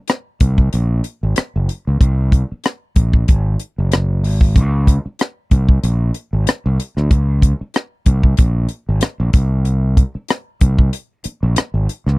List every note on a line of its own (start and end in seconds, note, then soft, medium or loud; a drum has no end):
0.08 cross-stick medium
0.08 closed hi-hat medium
0.40 0.68 C2 medium
0.40 kick medium
0.40 closed hi-hat medium
0.58 kick medium
0.73 1.00 A#1 medium
0.73 closed hi-hat medium
1.04 closed hi-hat medium
1.23 1.35 G#1 medium
1.36 cross-stick medium
1.36 closed hi-hat medium
1.56 1.67 F#1 medium
1.69 closed hi-hat medium
1.87 1.99 C#2 medium
2.01 2.42 C2 medium
2.01 kick medium
2.01 closed hi-hat medium
2.32 kick medium
2.32 closed hi-hat medium
2.52 muted fingered electric bass stroke soft
2.64 cross-stick medium
2.64 closed hi-hat medium
2.96 3.23 A#1 medium
2.96 kick medium
2.96 closed hi-hat medium
3.13 kick medium
3.28 3.55 G#1 medium
3.28 kick loud
3.28 closed hi-hat medium
3.59 closed hi-hat medium
3.78 4.25 F#1 medium
3.92 cross-stick medium
3.92 closed hi-hat medium
4.24 4.58 G#1 medium
4.24 open hi-hat medium
4.41 kick medium
4.56 4.97 C#2 medium
4.56 kick medium
4.56 closed hi-hat medium
4.87 kick medium
4.87 closed hi-hat medium
5.06 muted fingered electric bass stroke soft
5.19 cross-stick medium
5.19 closed hi-hat medium
5.51 5.78 C2 medium
5.51 kick medium
5.51 closed hi-hat medium
5.69 kick medium
5.84 6.10 A#1 medium
5.84 closed hi-hat medium
6.14 closed hi-hat medium
6.33 6.45 G#1 medium
6.47 cross-stick medium
6.47 closed hi-hat medium
6.66 6.77 C2 medium
6.80 closed hi-hat medium
6.97 7.09 D2 medium
6.97 cross-stick soft
7.11 7.52 C#2 medium
7.11 kick medium
7.11 closed hi-hat medium
7.42 kick medium
7.42 closed hi-hat medium
7.61 muted fingered electric bass stroke soft
7.74 cross-stick medium
7.74 closed hi-hat medium
8.06 8.33 C2 medium
8.06 kick medium
8.06 closed hi-hat medium
8.23 kick medium
8.37 8.66 A#1 medium
8.37 kick medium
8.37 closed hi-hat medium
8.69 closed hi-hat medium
8.89 9.01 G#1 medium
9.01 muted fingered electric bass stroke soft
9.01 cross-stick medium
9.01 closed hi-hat medium
9.20 9.32 A#1 medium
9.33 10.02 C2 medium
9.33 kick medium
9.33 closed hi-hat medium
9.65 closed hi-hat medium
9.97 kick medium
9.97 closed hi-hat medium
10.15 muted fingered electric bass stroke soft
10.28 cross-stick medium
10.28 closed hi-hat medium
10.61 10.89 C2 medium
10.61 kick medium
10.61 closed hi-hat medium
10.79 kick medium
10.93 closed hi-hat medium
11.24 muted fingered electric bass stroke soft
11.24 closed hi-hat medium
11.43 11.55 A#1 medium
11.56 cross-stick medium
11.56 closed hi-hat medium
11.74 11.87 G#1 medium
11.89 closed hi-hat medium
12.07 12.19 C#2 medium
12.07 cross-stick soft